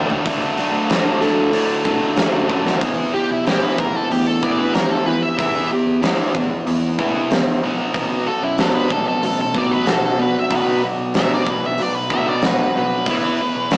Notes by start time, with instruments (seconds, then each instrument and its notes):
Already playing: picked electric bass D2, distorted electric guitar D3 F#3 A3
0.10 distorted electric guitar A3 D4, floor tom
0.14 distorted electric guitar F#3
0.26 picked electric bass D2, distorted electric guitar D3 F#3 A3 D4, kick, open hi-hat
0.58 distorted electric guitar D3 F#3 A3 D4, open hi-hat
0.72 picked electric bass D2
0.90 distorted electric guitar D3 F#3 A3 D4, steel-string acoustic guitar E4, snare, open hi-hat
1.04 picked electric bass D3
1.21 distorted electric guitar D3 F#3 A3 D4, steel-string acoustic guitar A4, open hi-hat
1.52 picked electric bass D2, distorted electric guitar D3 F#3 A3 D4, steel-string acoustic guitar E4, open hi-hat
1.84 distorted electric guitar D3 F#3 A3 D4, picked electric bass D3, kick, open hi-hat
2.16 distorted electric guitar D3 F#3 A3 D4, snare, open hi-hat
2.33 picked electric bass F#2
2.49 distorted electric guitar D3 F#3 A3 D4, kick
2.65 picked electric bass D#2, snare
2.81 picked electric bass E2, distorted electric guitar E3 B3 E4, kick, open hi-hat
3.14 distorted electric guitar E3 B3, steel-string acoustic guitar G4, lead electric guitar G4
3.30 picked electric bass B1, lead electric guitar E4
3.46 distorted electric guitar E3 B3 E4, lead electric guitar G4, snare, open hi-hat
3.63 lead electric guitar B4
3.78 picked electric bass E2, distorted electric guitar E3 B3, lead electric guitar A#4, kick
3.96 lead electric guitar A4
4.10 picked electric bass D2, distorted electric guitar E3 B3, lead electric guitar G4, open hi-hat
4.27 lead electric guitar A4
4.43 distorted electric guitar E3 B3 E4, lead electric guitar D5, kick
4.58 picked electric bass D2, lead electric guitar B4
4.74 distorted electric guitar E3 B3, steel-string acoustic guitar G4, lead electric guitar A#4, snare, open hi-hat
4.91 lead electric guitar A4
5.06 picked electric bass E3, distorted electric guitar E3 B3, steel-string acoustic guitar E4, lead electric guitar B4
5.22 lead electric guitar E5
5.38 picked electric bass E2, distorted electric guitar E3 B3 E4, lead electric guitar E5, kick, open hi-hat
5.71 distorted electric guitar E3 B3, steel-string acoustic guitar G4
5.86 picked electric bass E2
6.02 distorted electric guitar E3 B3 E4, snare, open hi-hat
6.34 picked electric bass E2, distorted electric guitar E3 B3, kick
6.67 picked electric bass E2, distorted electric guitar E3 B3, open hi-hat
6.98 distorted electric guitar E3 B3 E4, kick
7.14 picked electric bass C2
7.31 distorted electric guitar E3 B3, steel-string acoustic guitar G4, snare, open hi-hat
7.63 picked electric bass B1, distorted electric guitar B2 F#3 B3
7.94 picked electric bass B1, distorted electric guitar B2 F#3 B3, kick, open hi-hat
8.27 distorted electric guitar B2 F#3, steel-string acoustic guitar F#4, lead electric guitar A4
8.43 picked electric bass F#2, lead electric guitar E4
8.58 distorted electric guitar B2 F#3 B3, steel-string acoustic guitar D4, lead electric guitar A4, snare, open hi-hat
8.75 lead electric guitar B4
8.90 picked electric bass B1, distorted electric guitar B2 F#3, steel-string acoustic guitar B3, lead electric guitar A4, kick
9.08 lead electric guitar A4
9.22 picked electric bass A1, distorted electric guitar B2 F#3, lead electric guitar A4, open hi-hat
9.41 lead electric guitar A4
9.54 distorted electric guitar B2 F#3 B3, lead electric guitar D5, kick
9.70 picked electric bass A1, lead electric guitar B4
9.86 distorted electric guitar B2 F#3, steel-string acoustic guitar F#4, lead electric guitar A4, snare, open hi-hat
10.06 lead electric guitar A4
10.18 picked electric bass B2, distorted electric guitar B2 F#3, steel-string acoustic guitar D4, lead electric guitar B4
10.39 lead electric guitar E5
10.50 picked electric bass B1, distorted electric guitar B2 F#3 B3, kick, open hi-hat
10.55 lead electric guitar B4
10.83 distorted electric guitar B2 F#3, steel-string acoustic guitar F#4
10.98 picked electric bass B1
11.14 distorted electric guitar B2 F#3 B3, steel-string acoustic guitar D4, lead electric guitar E5, snare, open hi-hat
11.34 lead electric guitar D5
11.46 picked electric bass B1, distorted electric guitar B2 F#3, steel-string acoustic guitar B3, lead electric guitar B4, kick
11.66 lead electric guitar E5
11.78 picked electric bass B1, distorted electric guitar B2 F#3, open hi-hat
11.82 lead electric guitar D5
11.95 lead electric guitar B4
12.10 distorted electric guitar B2 F#3 B3, lead electric guitar E5, kick
12.27 picked electric bass B1, lead electric guitar D5
12.42 distorted electric guitar B2 F#3, steel-string acoustic guitar F#4, lead electric guitar B4, snare, open hi-hat
12.75 picked electric bass B1, distorted electric guitar B2 F#3, steel-string acoustic guitar D4, lead electric guitar B4
13.06 picked electric bass E2, distorted electric guitar E3 B3, kick, open hi-hat
13.10 distorted electric guitar E4
13.41 distorted electric guitar E3 B3
13.55 picked electric bass B1
13.71 distorted electric guitar E3 B3 E4, snare, open hi-hat